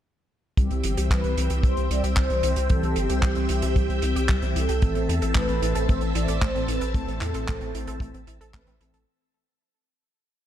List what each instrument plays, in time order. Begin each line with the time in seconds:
0.57 analog synth bass C2, analog polysynth E3 G3 C4 G4, synth arpeggio sound G3, string machine C4 E5 G5 E6, kick, closed hi-hat
0.71 analog synth bass C2, synth arpeggio sound C4, closed hi-hat
0.84 analog synth bass G1, synth arpeggio sound E4, closed hi-hat
0.97 analog synth bass C2, analog polysynth E3 G3 C4 G4, synth arpeggio sound G4, closed hi-hat
1.11 analog synth bass C2, synth arpeggio sound G3, analog polysynth B4, kick, clap, closed hi-hat
1.24 analog synth bass C2, synth arpeggio sound C4, closed hi-hat
1.37 analog synth bass C2, analog polysynth E3 G3 C4 G4, synth arpeggio sound E4, closed hi-hat
1.50 analog synth bass C2, synth arpeggio sound G4, closed hi-hat
1.63 analog synth bass C2, synth arpeggio sound G3, analog polysynth C5, kick, closed hi-hat
1.77 analog synth bass C2, synth arpeggio sound C4, closed hi-hat
1.90 analog synth bass C2, analog polysynth E3 G3 C4 G4 D5, synth arpeggio sound E4, closed hi-hat
2.04 analog synth bass C2, synth arpeggio sound G4, closed hi-hat
2.16 analog synth bass C2, synth arpeggio sound G3, analog polysynth C5, kick, clap, closed hi-hat
2.30 analog synth bass C2, analog polysynth E3 G3 C4 G4, synth arpeggio sound C4, closed hi-hat
2.43 analog synth bass C2, synth arpeggio sound E4, closed hi-hat
2.56 analog synth bass C2, synth arpeggio sound G4, closed hi-hat
2.70 analog synth bass C2, analog polysynth E3 G3 C4 G4 A4, synth arpeggio sound G3, kick, closed hi-hat
2.83 analog synth bass C2, synth arpeggio sound C4, closed hi-hat
2.96 analog synth bass G1, synth arpeggio sound E4, analog polysynth G4, closed hi-hat
3.10 analog synth bass C2, analog polysynth E3 G3 C4 G4, synth arpeggio sound G4, closed hi-hat
3.22 analog synth bass C2, synth arpeggio sound G3, kick, clap, closed hi-hat
3.35 analog synth bass C2, synth arpeggio sound C4, closed hi-hat
3.49 analog synth bass C2, analog polysynth E3 G3 C4 G4, synth arpeggio sound E4, closed hi-hat
3.62 analog synth bass C2, synth arpeggio sound G4, closed hi-hat
3.76 analog synth bass C2, synth arpeggio sound G3, kick, closed hi-hat
3.89 analog synth bass C2, synth arpeggio sound C4, closed hi-hat
4.02 analog synth bass C2, analog polysynth E3 G3 C4 G4, synth arpeggio sound E4, closed hi-hat
4.16 analog synth bass C2, synth arpeggio sound G4, closed hi-hat
4.29 analog synth bass C2, synth arpeggio sound G3, kick, clap, closed hi-hat
4.42 analog synth bass C2, analog polysynth E3 G3 C4 G4, synth arpeggio sound C4, closed hi-hat
4.56 analog synth bass C2, synth arpeggio sound E4, analog polysynth A4, closed hi-hat
4.69 analog synth bass C2, synth arpeggio sound G4, closed hi-hat
4.82 analog synth bass A1, analog polysynth A2 E3 A3 C4 A4, synth arpeggio sound A3, string machine C4 A5, kick, closed hi-hat
4.95 analog synth bass A1, synth arpeggio sound C4, closed hi-hat
5.09 analog synth bass E2, synth arpeggio sound E4, closed hi-hat
5.22 analog synth bass A1, analog polysynth A2 E3 A3 C4 A4, synth arpeggio sound A4, closed hi-hat
5.35 analog synth bass A1, synth arpeggio sound A3, analog polysynth B4, kick, clap, closed hi-hat
5.49 analog synth bass A1, synth arpeggio sound C4, closed hi-hat
5.62 analog synth bass A1, analog polysynth A2 E3 A3 C4 A4, synth arpeggio sound E4, closed hi-hat
5.75 analog synth bass A1, synth arpeggio sound A4, closed hi-hat
5.89 analog synth bass A1, synth arpeggio sound A3, analog polysynth C5, kick, closed hi-hat
6.01 analog synth bass A1, synth arpeggio sound C4, closed hi-hat
6.15 analog synth bass A1, analog polysynth A2 E3 A3 C4 A4 D5, synth arpeggio sound E4, closed hi-hat
6.28 analog synth bass A1, synth arpeggio sound A4, closed hi-hat
6.42 analog synth bass A1, synth arpeggio sound A3, analog polysynth C5, kick, clap, closed hi-hat
6.55 analog synth bass A1, analog polysynth A2 E3 A3 C4 A4, synth arpeggio sound C4, closed hi-hat
6.68 analog synth bass A1, synth arpeggio sound E4, analog polysynth B4, closed hi-hat
6.81 analog synth bass A1, synth arpeggio sound A4, closed hi-hat
6.94 analog synth bass A1, analog polysynth A2 E3 A3 C4 A4, synth arpeggio sound A3, kick, closed hi-hat
7.08 analog synth bass A1, synth arpeggio sound C4, closed hi-hat
7.21 analog synth bass E2, synth arpeggio sound E4, clap, closed hi-hat
7.34 analog synth bass A1, analog polysynth A2 E3 A3 C4 A4, synth arpeggio sound A4, closed hi-hat
7.48 analog synth bass A1, synth arpeggio sound A3, kick, clap, closed hi-hat
7.61 analog synth bass A1, synth arpeggio sound C4, closed hi-hat
7.74 analog synth bass A1, analog polysynth A2 E3 A3 C4 A4, synth arpeggio sound E4, closed hi-hat
7.87 analog synth bass A1, synth arpeggio sound A4, closed hi-hat
8.00 analog synth bass A1, synth arpeggio sound A3, kick, closed hi-hat
8.14 analog synth bass A1, synth arpeggio sound C4, closed hi-hat
8.27 analog synth bass A1, synth arpeggio sound E4, closed hi-hat
8.41 analog synth bass A1, synth arpeggio sound A4, closed hi-hat
8.54 analog synth bass A1, analog polysynth A2 E3 A3 C4 B4, synth arpeggio sound A3, kick, clap, closed hi-hat
8.67 analog synth bass A1, synth arpeggio sound C4, closed hi-hat
8.80 analog synth bass A1, analog polysynth A2 E3 A3 C4 A4, synth arpeggio sound E4, closed hi-hat
8.94 analog synth bass A1, synth arpeggio sound A4, closed hi-hat